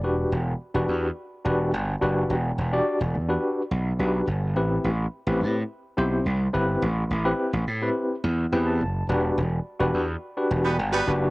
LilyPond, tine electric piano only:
\new Staff \with { instrumentName = "Tine electric piano" } { \time 4/4 \key e \minor \tempo 4 = 106 << { r1 | r1 | r1 | r2. g''16 a''8. |
r1 | } \\ { <d' fis' g' b'>8 r8. <d' fis' g' b'>8 r8. <d' fis' g' b'>8 r8 <d' fis' g' b'>8 | r8. <d' fis' g' d''>8 r8 <d' fis' g' b'>8 r8. <d' fis' g' b'>8 r8 | <c' e' g' b'>8 r8. <c' e' g' b'>8 r8. <c' e' g' c''>8 r8 <c' e' g' b'>8 | r8. <c' e' g' b'>8 r8 <c' e' g' b'>8 r8. <c' e' g' b'>8 r8 |
<d' fis' g' b'>8 r8. <d' fis' g' b'>8 r8 <d' fis' g' b'>8 r8. <d' fis' g' b'>8 | } >> }